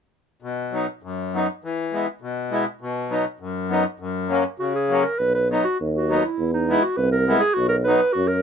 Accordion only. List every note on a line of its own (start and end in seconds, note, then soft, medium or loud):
0.42 0.87 B2 medium
0.72 0.86 F#3 soft
0.72 0.86 B3 soft
0.72 0.87 D#4 soft
1.03 1.47 F#2 medium
1.34 1.47 F#3 soft
1.34 1.47 B3 soft
1.34 1.48 D#4 medium
1.64 2.08 E3 medium
1.93 2.06 G#3 soft
1.93 2.06 B3 soft
1.93 2.06 E4 soft
2.21 2.66 B2 medium
2.51 2.65 G#3 soft
2.51 2.65 B3 soft
2.51 2.65 E4 medium
2.81 3.26 B2 medium
3.10 3.24 F#3 soft
3.10 3.24 B3 soft
3.10 3.25 D#4 medium
3.40 3.85 F#2 medium
3.69 3.83 F#3 medium
3.69 3.84 B3 soft
3.69 3.84 D#4 medium
4.00 4.45 F#2 medium
4.29 4.43 F#3 medium
4.29 4.43 A#3 soft
4.29 4.44 C#4 medium
4.59 5.05 C#3 medium
4.89 5.03 F#3 medium
4.89 5.03 A#3 medium
4.89 5.04 C#4 medium
5.50 5.64 F#3 soft
5.50 5.64 B3 soft
5.50 5.64 D#4 medium
6.08 6.22 F#3 soft
6.08 6.23 B3 soft
6.08 6.23 D#4 medium
6.69 6.82 G#3 soft
6.69 6.82 B3 soft
6.69 6.83 E4 medium
7.28 7.41 G#3 medium
7.28 7.41 B3 medium
7.28 7.42 E4 medium
7.86 8.00 F#3 medium
7.86 8.00 B3 soft
7.86 8.01 D#4 medium